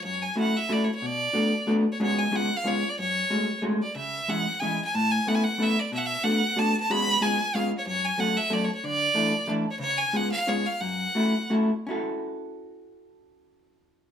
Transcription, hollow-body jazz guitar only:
\new Staff \with { instrumentName = "Hollow-body jazz guitar" } { \time 3/4 \key fis \minor \tempo 4 = 184 fis,4 <a cis' e' fis' a'>8 r8 <a cis' e' fis' a'>8 r8 | b,4 <a b d' fis' a'>8 r8 <a b d' fis' a'>8 r8 | <gis b cis' fis' gis'>4 <gis b cis' eis' gis'>8 r8 <gis b cis' eis' gis'>8 r8 | fis,4 <gis a cis' fis' gis'>8 r8 <gis a cis' fis' gis'>8 r8 |
cis4 <e gis cis' e' gis'>8 r8 <e gis cis' e' gis'>8 r8 | a,4 <a b cis' e' a'>8 r8 <a b cis' e' a'>8 r8 | b,4 <a b d' fis' a'>8 r8 <a b d' fis' a'>8 r8 | <gis b cis' fis' gis'>4 <gis b cis' eis' gis'>8 r8 <gis b cis' eis' gis'>8 r8 |
fis,4 <fis a cis' fis' a'>8 r8 <fis a cis' fis' a'>8 r8 | d4 <e a d' e' a'>8 r8 <e a d' e' a'>8 r8 | cis4 <gis b cis' eis' gis'>8 r8 <gis b cis' eis' gis'>8 r8 | fis,4 <a cis' e' fis' a'>8 r8 <a cis' e' fis' a'>8 r8 |
<cis' e' fis' a'>2.~ | <cis' e' fis' a'>2. | }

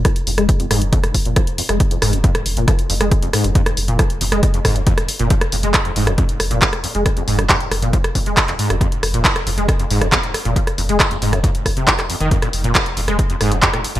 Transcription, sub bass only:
\new Staff \with { instrumentName = "Sub bass" } { \clef bass \time 4/4 \key f \minor \tempo 4 = 137 r8 f,,16 f,,16 r16 f,,16 f,,16 f,,16 r8 f,,16 f,,16 r16 f,,16 r16 f,,16 | r8 f,,16 f,,16 r16 f,,16 f,,16 f,,16 r8 f,,16 f,,16 r16 f,,16 r16 f,,16 | r8 f,,16 f,,16 r16 f,,16 f,,16 f,,16 r8 f,,16 f,,16 r16 f,,16 r16 f,,16 | r8 f,,16 f,,16 r16 f,,16 f,,16 f,,16 r8 f,,16 f,,16 r16 f,,16 r16 f,,16 |
r8 f,,16 f,,16 r16 f,,16 f,,16 f,,16 r8 f,,16 f,,16 r16 f,,16 r16 f,,16 | r8 f,,16 f,,16 r16 f,,16 f,,16 f,,16 r8 f,,16 f,,16 r16 f,,16 r16 f,,16 | r8 f,,16 f,,16 r16 f,,16 f,,16 f,,16 r8 f,,16 f,,16 r16 f,,16 r16 f,,16 | r8 f,,16 f,,16 r16 f,,16 f,,16 f,,16 r8 f,,16 f,,16 r16 f,,16 r16 f,,16 | }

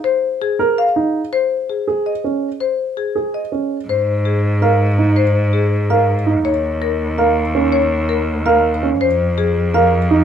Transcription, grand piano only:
\new Staff \with { instrumentName = "Grand piano" } { \time 7/8 \key aes \major \tempo 4 = 164 r4. bes'8 r8 ees'8 r8 | r4. aes'8 r8 des'8 r8 | r4. aes'8 r8 des'8 r8 | r2 bes'8 r8 ees'8 |
r2 bes'8 r8 ees'8 | r2 bes'8 r8 des'8 | r2 bes'8 r8 des'8 | r2 bes'8 r8 ees'8 | }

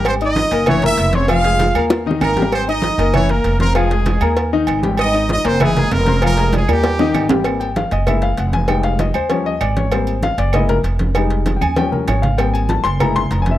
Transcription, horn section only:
\new Staff \with { instrumentName = "Horn section" } { \time 4/4 \key aes \major \tempo 4 = 194 <c' c''>8 <ees' ees''>4. <des' des''>8 <fes' fes''>4 <des' des''>8 | <f' f''>2 r4 <bes bes'>4 | <c' c''>8 <ees' ees''>4. <des' des''>8 <bes bes'>4 <bes bes'>8 | <aes aes'>2 r2 |
<ees' ees''>4 <ees' ees''>8 <c' c''>8 <aes aes'>4 <bes bes'>4 | <bes bes'>4 <aes aes'>8 <g g'>2 r8 | r1 | r1 |
r1 | r1 | r1 | }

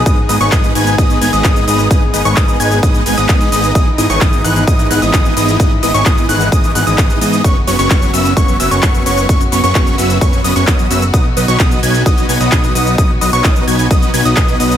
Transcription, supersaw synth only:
\new Staff \with { instrumentName = "Supersaw synth" } { \time 4/4 \key b \major \tempo 4 = 130 <gis b dis' b' dis''>16 r16 <gis b dis' b' dis''>16 <gis b dis' b' cis''>16 <gis b dis' b' dis''>8 <gis b dis' b' gis''>8 <gis b dis' b' dis''>8 <gis b dis' b' gis''>16 <gis b dis' b' dis''>16 <gis b dis' b' dis''>8 <gis b dis' b' dis''>8 | <gis b dis' b' dis''>16 r16 <gis b dis' b' dis''>16 <gis b dis' b' cis''>16 <gis b dis' b' dis''>8 <gis b dis' b' gis''>8 <gis b dis' b' dis''>8 <gis b dis' b' gis''>16 <gis b dis' b' dis''>16 <gis b dis' b' dis''>8 <gis b dis' b' dis''>8 | <e b dis' gis' dis''>16 r16 <e b dis' gis' dis''>16 <e b dis' gis' cis''>16 <e b dis' gis' dis''>8 <e b dis' gis' fis''>8 <e b dis' gis' dis''>8 <e b dis' gis' fis''>16 <e b dis' gis' dis''>16 <e b dis' gis' dis''>8 <e b dis' gis' dis''>8 | <e b dis' gis' dis''>16 r16 <e b dis' gis' dis''>16 <e b dis' gis' cis''>16 <e b dis' gis' dis''>8 <e b dis' gis' fis''>8 <e b dis' gis' dis''>8 <e b dis' gis' fis''>16 <e b dis' gis' dis''>16 <e b dis' gis' dis''>8 <e b dis' gis' dis''>8 |
<fis b cis' b' cis''>16 r16 <fis b cis' b' cis''>16 <fis b cis' b' cis''>16 <fis b cis' b' cis''>8 <fis b cis' b' e''>8 <fis b cis' b' cis''>8 <fis b cis' b' e''>16 <fis b cis' b' cis''>16 <fis b cis' b' cis''>8 <fis b cis' b' cis''>8 | <fis b cis' b' cis''>16 r16 <fis b cis' b' cis''>16 <fis b cis' b' cis''>16 <fis b cis' b' cis''>8 <fis b cis' b' e''>8 <fis b cis' b' cis''>8 <fis b cis' b' dis''>16 <fis b cis' b' cis''>16 <fis b cis' b' dis''>8 <fis b cis' b' e''>16 r16 | <fis b dis' b' dis''>16 r16 <fis b dis' b' dis''>16 <fis b dis' b' cis''>16 <fis b dis' b' dis''>8 <fis b dis' b' gis''>8 <fis b dis' b' dis''>8 <fis b dis' b' gis''>16 <fis b dis' b' dis''>16 <fis b dis' b' dis''>8 <fis b dis' b' dis''>8 | <fis b dis' b' dis''>16 r16 <fis b dis' b' dis''>16 <fis b dis' b' cis''>16 <fis b dis' b' dis''>8 <fis b dis' b' gis''>8 <fis b dis' b' dis''>8 <fis b dis' b' gis''>16 <fis b dis' b' dis''>16 <fis b dis' b' dis''>8 <fis b dis' b' dis''>8 | }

